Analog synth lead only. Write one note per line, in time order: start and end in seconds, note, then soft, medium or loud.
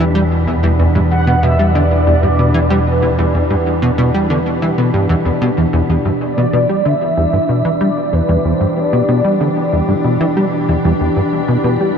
1.11 1.44 F#5 loud
1.43 1.76 E5 loud
1.74 2.72 D5 loud
2.70 3.34 B4 medium
6.22 6.87 D5 loud
6.85 7.83 E5 loud
7.81 8.15 D5 loud
8.13 8.46 B4 loud
8.45 8.76 C5 medium
8.77 9.69 D5 medium